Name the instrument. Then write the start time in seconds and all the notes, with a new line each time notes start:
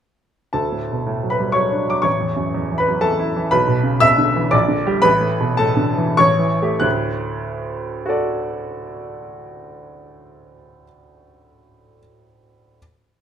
grand piano
0.53 D2 A4 A5
0.72 A2
0.92 B2
1.07 A2
1.23 F#3
1.30 B4 B5
1.39 G3
1.52 F#3 C#5 C#6
1.72 D4
1.88 F#3 D6
2.02 A1 C#5 C#6
2.21 E2
2.36 F#2
2.55 E2
2.72 E3
2.78 B4 B5
2.88 F#3
3.01 E3 A4 A5
3.19 E4
3.36 E3
3.51 B1 B4 B5
3.67 B2
3.83 C#3
4.00 B2 E5 E6
4.18 D3
4.36 E3
4.51 A#1 D5 D6
4.68 D3
4.86 G3 G4
5.02 A1 B4 B5
5.21 A2
5.41 B2
5.57 A2 A4 A5
5.77 D3
5.97 E3
6.17 A1 C#5 C#6
6.39 E3
6.62 A3 G4
6.80 D2 A2 F#6
8.06 F#4 A4 D5